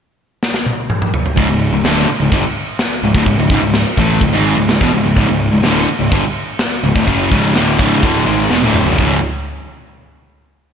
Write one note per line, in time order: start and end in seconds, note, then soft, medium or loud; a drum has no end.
0.43 snare medium
0.54 snare medium
0.66 high tom medium
0.90 mid tom medium
1.02 mid tom medium
1.14 floor tom loud
1.26 floor tom loud
1.36 1.48 C#1 medium
1.36 1.48 C#2 loud
1.36 1.48 G#2 medium
1.36 kick loud
1.36 crash medium
1.49 1.71 C#1 medium
1.49 1.68 C#2 medium
1.49 1.68 G#2 medium
1.73 1.84 C#1 medium
1.73 1.83 C#2 medium
1.73 1.84 G#2 medium
1.84 2.06 D1 loud
1.84 2.07 D2 medium
1.84 2.08 A2 medium
1.84 2.08 D3 medium
1.84 snare loud
1.84 crash medium
2.09 muted picked electric bass stroke soft
2.09 muted distorted electric guitar stroke medium
2.20 2.31 C#1 medium
2.20 2.32 C#2 medium
2.20 2.33 G#2 medium
2.32 2.43 G1 loud
2.32 2.43 G2 medium
2.32 2.44 D3 loud
2.32 kick loud
2.32 crash medium
2.79 snare loud
2.79 crash medium
3.03 3.14 C#1 medium
3.03 3.14 C#2 medium
3.03 3.15 G#2 medium
3.14 3.25 D1 loud
3.14 3.26 D2 medium
3.14 3.26 A2 medium
3.14 kick medium
3.26 3.37 C#1 medium
3.26 3.38 C#2 medium
3.26 3.39 G#2 medium
3.26 kick loud
3.26 crash medium
3.38 3.49 C#1 medium
3.38 3.50 C#2 medium
3.38 3.50 G#2 medium
3.50 3.61 C#1 loud
3.50 3.62 C#2 loud
3.50 3.62 G#2 loud
3.50 kick loud
3.62 3.84 C#1 medium
3.62 3.82 C#2 medium
3.62 3.82 G#2 medium
3.74 snare loud
3.74 crash medium
3.97 4.19 A1 loud
3.97 4.21 A2 medium
3.97 4.21 E3 medium
3.97 4.21 A3 loud
3.97 kick loud
4.21 4.32 C#1 medium
4.21 4.32 C#2 medium
4.21 4.31 G#2 medium
4.21 kick medium
4.21 crash medium
4.32 4.56 G#1 loud
4.32 4.55 G#2 medium
4.32 4.56 D#3 medium
4.32 4.57 G#3 loud
4.56 4.68 C#1 medium
4.56 4.68 C#2 medium
4.56 4.69 G#2 medium
4.69 4.80 C#1 medium
4.69 4.80 C#2 medium
4.69 4.81 G#2 medium
4.69 snare loud
4.69 crash medium
4.81 4.92 E1 loud
4.81 4.92 E2 loud
4.81 4.92 B2 loud
4.81 kick loud
4.93 5.04 C#1 medium
4.93 5.03 C#2 medium
4.93 5.04 G#2 medium
5.04 5.16 C#1 medium
5.04 5.14 C#2 medium
5.04 5.16 G#2 medium
5.16 5.28 C#1 medium
5.16 5.27 C#2 medium
5.16 5.27 G#2 loud
5.16 kick loud
5.16 crash medium
5.28 5.51 C#1 medium
5.28 5.47 C#2 medium
5.28 5.48 G#2 medium
5.51 5.64 C#1 medium
5.51 5.62 C#2 medium
5.51 5.62 G#2 medium
5.62 5.87 D1 medium
5.62 5.86 D2 loud
5.62 5.87 A2 medium
5.62 5.87 D3 loud
5.62 snare loud
5.62 crash medium
5.88 muted distorted electric guitar stroke medium
5.88 muted picked electric bass stroke soft
5.99 6.11 C#1 medium
5.99 6.10 C#2 medium
5.99 6.11 G#2 medium
6.10 6.23 G1 loud
6.10 6.22 G2 loud
6.10 6.23 D3 loud
6.10 kick loud
6.10 crash medium
6.59 snare loud
6.59 crash medium
6.72 snare soft
6.83 6.95 C#1 medium
6.83 6.94 C#2 medium
6.83 6.95 G#2 medium
6.95 7.06 D1 medium
6.95 7.06 D2 medium
6.95 7.06 A2 loud
6.95 kick loud
7.06 7.29 F#1 medium
7.06 7.30 F#2 medium
7.06 7.30 C#3 medium
7.06 7.30 F#3 medium
7.06 kick medium
7.06 crash medium
7.31 7.54 C#1 medium
7.31 7.54 C#2 medium
7.31 7.54 G#2 loud
7.31 7.55 C#3 loud
7.31 kick loud
7.54 7.78 D1 loud
7.54 7.77 D2 medium
7.54 7.78 A2 medium
7.54 7.78 D3 loud
7.54 snare loud
7.54 crash medium
7.78 8.01 C#1 medium
7.78 8.01 C#2 medium
7.78 8.02 G#2 medium
7.78 8.02 C#3 loud
7.78 kick loud
8.02 8.25 D1 loud
8.02 8.25 D2 medium
8.02 8.25 A2 loud
8.02 8.26 D3 loud
8.02 kick loud
8.02 crash medium
8.25 8.49 G#1 loud
8.25 8.49 G#2 medium
8.25 8.50 D#3 loud
8.25 8.50 G#3 loud
8.50 8.62 E1 medium
8.50 8.62 E2 medium
8.50 8.62 B2 loud
8.50 snare medium
8.62 8.85 D1 loud
8.62 8.86 D2 medium
8.62 8.86 A2 medium
8.62 8.87 D3 loud
8.62 high tom medium
8.74 mid tom loud
8.86 8.98 F#1 medium
8.86 8.98 F#2 medium
8.86 8.98 C#3 loud
8.86 floor tom medium
8.98 9.21 C#1 medium
8.98 9.18 C#2 medium
8.98 9.18 G#2 loud
8.98 9.18 C#3 loud
8.98 kick loud
8.98 floor tom loud
8.98 crash medium